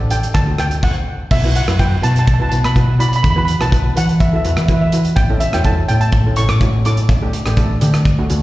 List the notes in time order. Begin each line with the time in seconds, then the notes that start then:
Already playing: A1
0.10 D4 G4 A4 G5, closed hi-hat
0.23 closed hi-hat
0.34 D2 A5, kick, cross-stick, closed hi-hat
0.47 D4 F#4 A4
0.58 G5, cross-stick, closed hi-hat
0.71 closed hi-hat
0.83 F#5, kick, crash
1.31 B1 E5, kick, crash
1.44 E4 F#4 B4
1.55 F#5, closed hi-hat
1.68 F#2 E4 F#4 B4, cross-stick, closed hi-hat
1.79 E4 F#4 B4 G5, kick, closed hi-hat
2.02 B2 E4 F#4 B4 A5, closed hi-hat
2.11 A5
2.16 A5, closed hi-hat
2.26 A5, kick, closed hi-hat
2.34 A5
2.39 E4 F#4 B4 A5
2.49 B1 E4 F#4 B4 A5, closed hi-hat
2.64 B2 B5, cross-stick, closed hi-hat
2.75 E4 F#4 B4, kick, closed hi-hat
2.99 E4 F#4 D5 B5, closed hi-hat
3.09 B5
3.13 B5, closed hi-hat
3.23 E2 B5, kick, closed hi-hat
3.30 B5
3.36 E4 F#4 B4 B5
3.45 B5, closed hi-hat
3.60 B1 E4 F#4 B4 A5, cross-stick, closed hi-hat
3.71 E4 F#4 B4, kick, closed hi-hat
3.96 E3 E4 F#4 B4 F#5, closed hi-hat
4.09 closed hi-hat
4.20 E5, kick, closed hi-hat
4.29 E5
4.33 E4 F#4 A4 E5
4.42 E2 E4 F#4 B4 E5, closed hi-hat
4.51 E5
4.57 E3 E5, cross-stick, closed hi-hat
4.66 E4 F#4 B4 E5, kick, closed hi-hat
4.73 E5
4.81 E5
4.92 E4 F#4 B4, closed hi-hat
5.05 closed hi-hat
5.16 A1 G5, kick, closed hi-hat
5.30 C#4 E4 A4
5.40 E5, closed hi-hat
5.53 E2 C#4 E4 F#4 G5, cross-stick, closed hi-hat
5.64 C#4 E4 A4 A5, kick, closed hi-hat
5.88 A2 C#4 E4 A4 G5, closed hi-hat
6.01 A5, closed hi-hat
6.12 kick, closed hi-hat
6.26 C#4 E4 A4
6.36 A1 C#4 E4 A4 C#6, closed hi-hat
6.49 A2 D6, cross-stick, closed hi-hat
6.61 C#4 E4 F#4, kick, closed hi-hat
6.85 C#4 E4 A4 D6, closed hi-hat
6.97 closed hi-hat
7.09 D2, kick, closed hi-hat
7.22 A3 D4 G4
7.33 closed hi-hat
7.46 A1 A3 D4 G4, cross-stick, closed hi-hat
7.57 A3 D4 A4, kick, closed hi-hat
7.81 D3 A3 D4 G4, closed hi-hat
7.94 cross-stick, closed hi-hat
8.05 D2, kick, closed hi-hat
8.19 A3 D4 F#4
8.30 D2 A3 D4 F#4, closed hi-hat